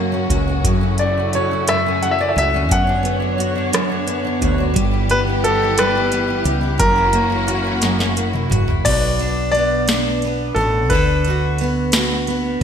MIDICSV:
0, 0, Header, 1, 6, 480
1, 0, Start_track
1, 0, Key_signature, 2, "minor"
1, 0, Tempo, 684151
1, 455, Time_signature, 6, 3, 24, 8
1, 8863, End_track
2, 0, Start_track
2, 0, Title_t, "Grand piano"
2, 0, Program_c, 0, 0
2, 696, Note_on_c, 0, 74, 69
2, 946, Note_off_c, 0, 74, 0
2, 948, Note_on_c, 0, 73, 59
2, 1184, Note_on_c, 0, 76, 86
2, 1193, Note_off_c, 0, 73, 0
2, 1417, Note_off_c, 0, 76, 0
2, 1421, Note_on_c, 0, 78, 65
2, 1479, Note_off_c, 0, 78, 0
2, 1483, Note_on_c, 0, 76, 73
2, 1541, Note_off_c, 0, 76, 0
2, 1549, Note_on_c, 0, 74, 75
2, 1605, Note_on_c, 0, 76, 61
2, 1606, Note_off_c, 0, 74, 0
2, 1662, Note_off_c, 0, 76, 0
2, 1672, Note_on_c, 0, 76, 87
2, 1908, Note_on_c, 0, 78, 85
2, 1915, Note_off_c, 0, 76, 0
2, 3075, Note_off_c, 0, 78, 0
2, 3585, Note_on_c, 0, 71, 102
2, 3637, Note_off_c, 0, 71, 0
2, 3816, Note_on_c, 0, 69, 89
2, 4061, Note_off_c, 0, 69, 0
2, 4062, Note_on_c, 0, 71, 92
2, 4507, Note_off_c, 0, 71, 0
2, 4767, Note_on_c, 0, 70, 107
2, 5703, Note_off_c, 0, 70, 0
2, 6208, Note_on_c, 0, 74, 102
2, 6665, Note_off_c, 0, 74, 0
2, 6676, Note_on_c, 0, 74, 101
2, 7399, Note_on_c, 0, 69, 80
2, 7426, Note_off_c, 0, 74, 0
2, 7644, Note_on_c, 0, 71, 76
2, 7654, Note_off_c, 0, 69, 0
2, 8160, Note_off_c, 0, 71, 0
2, 8863, End_track
3, 0, Start_track
3, 0, Title_t, "Steel-string acoustic guitar"
3, 0, Program_c, 1, 25
3, 0, Note_on_c, 1, 42, 71
3, 0, Note_on_c, 1, 58, 49
3, 0, Note_on_c, 1, 61, 47
3, 0, Note_on_c, 1, 66, 59
3, 80, Note_off_c, 1, 61, 0
3, 83, Note_on_c, 1, 61, 55
3, 206, Note_off_c, 1, 66, 0
3, 208, Note_on_c, 1, 66, 58
3, 331, Note_off_c, 1, 61, 0
3, 334, Note_on_c, 1, 61, 51
3, 445, Note_off_c, 1, 42, 0
3, 454, Note_on_c, 1, 42, 68
3, 504, Note_off_c, 1, 58, 0
3, 566, Note_off_c, 1, 61, 0
3, 569, Note_on_c, 1, 61, 50
3, 695, Note_on_c, 1, 57, 55
3, 821, Note_off_c, 1, 61, 0
3, 824, Note_on_c, 1, 61, 46
3, 939, Note_off_c, 1, 66, 0
3, 942, Note_on_c, 1, 66, 57
3, 1058, Note_off_c, 1, 61, 0
3, 1061, Note_on_c, 1, 61, 51
3, 1172, Note_off_c, 1, 42, 0
3, 1180, Note_on_c, 1, 42, 67
3, 1304, Note_off_c, 1, 61, 0
3, 1307, Note_on_c, 1, 61, 53
3, 1412, Note_off_c, 1, 57, 0
3, 1421, Note_on_c, 1, 57, 51
3, 1530, Note_off_c, 1, 61, 0
3, 1533, Note_on_c, 1, 61, 59
3, 1651, Note_off_c, 1, 66, 0
3, 1654, Note_on_c, 1, 66, 56
3, 1779, Note_off_c, 1, 61, 0
3, 1782, Note_on_c, 1, 61, 57
3, 1878, Note_off_c, 1, 42, 0
3, 1887, Note_on_c, 1, 42, 71
3, 1950, Note_off_c, 1, 57, 0
3, 2010, Note_off_c, 1, 61, 0
3, 2013, Note_on_c, 1, 62, 54
3, 2125, Note_on_c, 1, 59, 55
3, 2236, Note_off_c, 1, 62, 0
3, 2245, Note_on_c, 1, 62, 50
3, 2369, Note_off_c, 1, 66, 0
3, 2372, Note_on_c, 1, 66, 66
3, 2486, Note_off_c, 1, 62, 0
3, 2494, Note_on_c, 1, 62, 53
3, 2606, Note_off_c, 1, 42, 0
3, 2614, Note_on_c, 1, 42, 74
3, 2725, Note_off_c, 1, 62, 0
3, 2733, Note_on_c, 1, 62, 52
3, 2850, Note_off_c, 1, 59, 0
3, 2853, Note_on_c, 1, 59, 53
3, 2970, Note_off_c, 1, 62, 0
3, 2978, Note_on_c, 1, 62, 53
3, 3088, Note_off_c, 1, 66, 0
3, 3096, Note_on_c, 1, 66, 55
3, 3205, Note_off_c, 1, 62, 0
3, 3214, Note_on_c, 1, 62, 57
3, 3323, Note_on_c, 1, 55, 83
3, 3382, Note_off_c, 1, 42, 0
3, 3383, Note_off_c, 1, 62, 0
3, 3384, Note_off_c, 1, 66, 0
3, 3447, Note_on_c, 1, 64, 54
3, 3573, Note_off_c, 1, 59, 0
3, 3576, Note_on_c, 1, 59, 62
3, 3696, Note_off_c, 1, 64, 0
3, 3699, Note_on_c, 1, 64, 52
3, 3817, Note_on_c, 1, 67, 67
3, 3943, Note_off_c, 1, 64, 0
3, 3945, Note_on_c, 1, 64, 55
3, 4044, Note_off_c, 1, 55, 0
3, 4053, Note_on_c, 1, 55, 80
3, 4174, Note_off_c, 1, 64, 0
3, 4177, Note_on_c, 1, 64, 56
3, 4281, Note_off_c, 1, 59, 0
3, 4289, Note_on_c, 1, 59, 57
3, 4404, Note_off_c, 1, 64, 0
3, 4406, Note_on_c, 1, 64, 57
3, 4511, Note_off_c, 1, 67, 0
3, 4519, Note_on_c, 1, 67, 61
3, 4635, Note_off_c, 1, 64, 0
3, 4638, Note_on_c, 1, 64, 52
3, 4755, Note_on_c, 1, 42, 77
3, 4812, Note_off_c, 1, 67, 0
3, 4816, Note_off_c, 1, 59, 0
3, 4817, Note_off_c, 1, 55, 0
3, 4878, Note_off_c, 1, 64, 0
3, 4881, Note_on_c, 1, 64, 55
3, 4999, Note_on_c, 1, 58, 60
3, 5112, Note_off_c, 1, 64, 0
3, 5121, Note_on_c, 1, 64, 57
3, 5240, Note_on_c, 1, 66, 69
3, 5355, Note_off_c, 1, 64, 0
3, 5364, Note_on_c, 1, 64, 58
3, 5472, Note_off_c, 1, 42, 0
3, 5481, Note_on_c, 1, 42, 74
3, 5596, Note_off_c, 1, 64, 0
3, 5604, Note_on_c, 1, 64, 56
3, 5718, Note_off_c, 1, 58, 0
3, 5726, Note_on_c, 1, 58, 56
3, 5837, Note_off_c, 1, 64, 0
3, 5846, Note_on_c, 1, 64, 57
3, 5958, Note_off_c, 1, 66, 0
3, 5961, Note_on_c, 1, 66, 63
3, 6078, Note_off_c, 1, 64, 0
3, 6087, Note_on_c, 1, 64, 56
3, 6213, Note_on_c, 1, 47, 71
3, 6218, Note_off_c, 1, 66, 0
3, 6221, Note_on_c, 1, 66, 62
3, 6257, Note_off_c, 1, 42, 0
3, 6258, Note_off_c, 1, 64, 0
3, 6259, Note_off_c, 1, 58, 0
3, 6456, Note_on_c, 1, 62, 60
3, 6709, Note_on_c, 1, 59, 56
3, 6947, Note_off_c, 1, 62, 0
3, 6950, Note_on_c, 1, 62, 57
3, 7186, Note_off_c, 1, 59, 0
3, 7189, Note_on_c, 1, 59, 55
3, 7422, Note_off_c, 1, 66, 0
3, 7425, Note_on_c, 1, 66, 64
3, 7654, Note_off_c, 1, 47, 0
3, 7665, Note_off_c, 1, 66, 0
3, 7665, Note_on_c, 1, 50, 73
3, 7668, Note_on_c, 1, 69, 68
3, 7908, Note_off_c, 1, 62, 0
3, 7911, Note_on_c, 1, 66, 61
3, 8143, Note_off_c, 1, 59, 0
3, 8146, Note_on_c, 1, 59, 64
3, 8378, Note_off_c, 1, 66, 0
3, 8386, Note_on_c, 1, 66, 62
3, 8611, Note_off_c, 1, 59, 0
3, 8614, Note_on_c, 1, 59, 60
3, 8839, Note_off_c, 1, 69, 0
3, 8863, Note_off_c, 1, 50, 0
3, 8863, Note_off_c, 1, 59, 0
3, 8863, Note_off_c, 1, 66, 0
3, 8863, End_track
4, 0, Start_track
4, 0, Title_t, "String section"
4, 0, Program_c, 2, 48
4, 0, Note_on_c, 2, 49, 68
4, 0, Note_on_c, 2, 54, 69
4, 0, Note_on_c, 2, 58, 57
4, 0, Note_on_c, 2, 66, 77
4, 437, Note_off_c, 2, 54, 0
4, 447, Note_off_c, 2, 58, 0
4, 453, Note_on_c, 2, 57, 66
4, 453, Note_on_c, 2, 64, 66
4, 1880, Note_off_c, 2, 49, 0
4, 1888, Note_off_c, 2, 57, 0
4, 1888, Note_off_c, 2, 64, 0
4, 1891, Note_on_c, 2, 73, 68
4, 1894, Note_on_c, 2, 59, 69
4, 1896, Note_on_c, 2, 50, 72
4, 3308, Note_off_c, 2, 66, 0
4, 3319, Note_off_c, 2, 73, 0
4, 3321, Note_off_c, 2, 50, 0
4, 3338, Note_on_c, 2, 55, 72
4, 3340, Note_on_c, 2, 52, 72
4, 3340, Note_on_c, 2, 67, 86
4, 4737, Note_off_c, 2, 59, 0
4, 4755, Note_off_c, 2, 55, 0
4, 4756, Note_off_c, 2, 52, 0
4, 4756, Note_off_c, 2, 67, 0
4, 4771, Note_on_c, 2, 52, 78
4, 4775, Note_on_c, 2, 61, 68
4, 4776, Note_on_c, 2, 66, 90
4, 4777, Note_on_c, 2, 58, 75
4, 6200, Note_off_c, 2, 52, 0
4, 6202, Note_off_c, 2, 61, 0
4, 6202, Note_off_c, 2, 66, 0
4, 6203, Note_off_c, 2, 58, 0
4, 8863, End_track
5, 0, Start_track
5, 0, Title_t, "Fretless electric bass"
5, 0, Program_c, 3, 35
5, 0, Note_on_c, 3, 42, 83
5, 182, Note_off_c, 3, 42, 0
5, 208, Note_on_c, 3, 37, 82
5, 438, Note_off_c, 3, 37, 0
5, 450, Note_on_c, 3, 42, 84
5, 1633, Note_off_c, 3, 42, 0
5, 1658, Note_on_c, 3, 37, 71
5, 1900, Note_off_c, 3, 37, 0
5, 1900, Note_on_c, 3, 42, 96
5, 3071, Note_off_c, 3, 42, 0
5, 3101, Note_on_c, 3, 38, 74
5, 3325, Note_off_c, 3, 38, 0
5, 3339, Note_on_c, 3, 31, 94
5, 4503, Note_off_c, 3, 31, 0
5, 4526, Note_on_c, 3, 37, 72
5, 4753, Note_off_c, 3, 37, 0
5, 4768, Note_on_c, 3, 30, 103
5, 5944, Note_off_c, 3, 30, 0
5, 5970, Note_on_c, 3, 30, 83
5, 6198, Note_off_c, 3, 30, 0
5, 6214, Note_on_c, 3, 35, 101
5, 7386, Note_off_c, 3, 35, 0
5, 7408, Note_on_c, 3, 33, 78
5, 7650, Note_off_c, 3, 33, 0
5, 7650, Note_on_c, 3, 38, 98
5, 8819, Note_off_c, 3, 38, 0
5, 8863, End_track
6, 0, Start_track
6, 0, Title_t, "Drums"
6, 212, Note_on_c, 9, 36, 82
6, 213, Note_on_c, 9, 42, 53
6, 283, Note_off_c, 9, 36, 0
6, 283, Note_off_c, 9, 42, 0
6, 453, Note_on_c, 9, 36, 104
6, 454, Note_on_c, 9, 42, 75
6, 523, Note_off_c, 9, 36, 0
6, 524, Note_off_c, 9, 42, 0
6, 687, Note_on_c, 9, 42, 42
6, 757, Note_off_c, 9, 42, 0
6, 934, Note_on_c, 9, 42, 44
6, 1004, Note_off_c, 9, 42, 0
6, 1175, Note_on_c, 9, 42, 79
6, 1183, Note_on_c, 9, 37, 102
6, 1246, Note_off_c, 9, 42, 0
6, 1253, Note_off_c, 9, 37, 0
6, 1421, Note_on_c, 9, 42, 44
6, 1492, Note_off_c, 9, 42, 0
6, 1669, Note_on_c, 9, 42, 52
6, 1739, Note_off_c, 9, 42, 0
6, 1903, Note_on_c, 9, 36, 104
6, 1904, Note_on_c, 9, 42, 79
6, 1974, Note_off_c, 9, 36, 0
6, 1975, Note_off_c, 9, 42, 0
6, 2141, Note_on_c, 9, 42, 45
6, 2211, Note_off_c, 9, 42, 0
6, 2387, Note_on_c, 9, 42, 51
6, 2457, Note_off_c, 9, 42, 0
6, 2619, Note_on_c, 9, 42, 79
6, 2627, Note_on_c, 9, 37, 107
6, 2690, Note_off_c, 9, 42, 0
6, 2697, Note_off_c, 9, 37, 0
6, 2859, Note_on_c, 9, 42, 49
6, 2929, Note_off_c, 9, 42, 0
6, 3101, Note_on_c, 9, 36, 84
6, 3101, Note_on_c, 9, 42, 52
6, 3171, Note_off_c, 9, 42, 0
6, 3172, Note_off_c, 9, 36, 0
6, 3341, Note_on_c, 9, 36, 107
6, 3341, Note_on_c, 9, 42, 77
6, 3411, Note_off_c, 9, 36, 0
6, 3411, Note_off_c, 9, 42, 0
6, 3575, Note_on_c, 9, 42, 46
6, 3645, Note_off_c, 9, 42, 0
6, 3820, Note_on_c, 9, 42, 47
6, 3890, Note_off_c, 9, 42, 0
6, 4053, Note_on_c, 9, 42, 86
6, 4060, Note_on_c, 9, 37, 103
6, 4123, Note_off_c, 9, 42, 0
6, 4130, Note_off_c, 9, 37, 0
6, 4292, Note_on_c, 9, 42, 51
6, 4362, Note_off_c, 9, 42, 0
6, 4529, Note_on_c, 9, 42, 49
6, 4599, Note_off_c, 9, 42, 0
6, 4768, Note_on_c, 9, 42, 82
6, 4769, Note_on_c, 9, 36, 115
6, 4838, Note_off_c, 9, 42, 0
6, 4839, Note_off_c, 9, 36, 0
6, 5002, Note_on_c, 9, 42, 47
6, 5072, Note_off_c, 9, 42, 0
6, 5248, Note_on_c, 9, 42, 50
6, 5251, Note_on_c, 9, 37, 35
6, 5319, Note_off_c, 9, 42, 0
6, 5321, Note_off_c, 9, 37, 0
6, 5484, Note_on_c, 9, 42, 85
6, 5491, Note_on_c, 9, 38, 52
6, 5555, Note_off_c, 9, 42, 0
6, 5561, Note_off_c, 9, 38, 0
6, 5615, Note_on_c, 9, 38, 53
6, 5685, Note_off_c, 9, 38, 0
6, 5732, Note_on_c, 9, 42, 48
6, 5802, Note_off_c, 9, 42, 0
6, 5852, Note_on_c, 9, 47, 63
6, 5922, Note_off_c, 9, 47, 0
6, 5977, Note_on_c, 9, 45, 91
6, 5978, Note_on_c, 9, 42, 53
6, 6048, Note_off_c, 9, 42, 0
6, 6048, Note_off_c, 9, 45, 0
6, 6090, Note_on_c, 9, 43, 70
6, 6160, Note_off_c, 9, 43, 0
6, 6213, Note_on_c, 9, 49, 96
6, 6214, Note_on_c, 9, 36, 117
6, 6214, Note_on_c, 9, 51, 62
6, 6283, Note_off_c, 9, 49, 0
6, 6284, Note_off_c, 9, 36, 0
6, 6284, Note_off_c, 9, 51, 0
6, 6451, Note_on_c, 9, 51, 39
6, 6521, Note_off_c, 9, 51, 0
6, 6697, Note_on_c, 9, 51, 39
6, 6768, Note_off_c, 9, 51, 0
6, 6929, Note_on_c, 9, 51, 76
6, 6937, Note_on_c, 9, 38, 111
6, 6999, Note_off_c, 9, 51, 0
6, 7007, Note_off_c, 9, 38, 0
6, 7171, Note_on_c, 9, 51, 40
6, 7241, Note_off_c, 9, 51, 0
6, 7410, Note_on_c, 9, 51, 41
6, 7480, Note_off_c, 9, 51, 0
6, 7647, Note_on_c, 9, 51, 65
6, 7651, Note_on_c, 9, 36, 110
6, 7717, Note_off_c, 9, 51, 0
6, 7721, Note_off_c, 9, 36, 0
6, 7890, Note_on_c, 9, 51, 40
6, 7960, Note_off_c, 9, 51, 0
6, 8128, Note_on_c, 9, 51, 42
6, 8198, Note_off_c, 9, 51, 0
6, 8363, Note_on_c, 9, 51, 76
6, 8371, Note_on_c, 9, 38, 107
6, 8434, Note_off_c, 9, 51, 0
6, 8441, Note_off_c, 9, 38, 0
6, 8611, Note_on_c, 9, 51, 42
6, 8681, Note_off_c, 9, 51, 0
6, 8863, End_track
0, 0, End_of_file